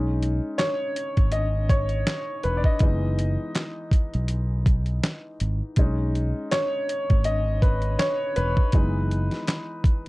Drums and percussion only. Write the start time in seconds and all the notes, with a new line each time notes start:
0.23 closed hi-hat
0.59 snare, clap, closed hi-hat
0.96 closed hi-hat
1.17 kick, closed hi-hat
1.32 closed hi-hat
1.69 kick, closed hi-hat
1.89 closed hi-hat
2.07 snare, clap, closed hi-hat
2.43 closed hi-hat
2.64 kick
2.79 kick, closed hi-hat
3.19 closed hi-hat
3.55 snare, clap, closed hi-hat
3.91 kick, closed hi-hat
4.14 closed hi-hat
4.28 closed hi-hat
4.66 kick, closed hi-hat
4.86 closed hi-hat
5.04 snare, clap, closed hi-hat
5.40 closed hi-hat
5.76 kick, closed hi-hat
6.15 closed hi-hat
6.51 snare, clap, closed hi-hat
6.89 closed hi-hat
7.10 kick, closed hi-hat
7.24 closed hi-hat
7.62 kick, closed hi-hat
7.82 closed hi-hat
7.99 snare, clap, closed hi-hat
8.36 closed hi-hat
8.57 kick
8.72 kick, closed hi-hat
9.11 closed hi-hat
9.31 snare, closed hi-hat
9.47 snare, clap, closed hi-hat
9.84 kick, closed hi-hat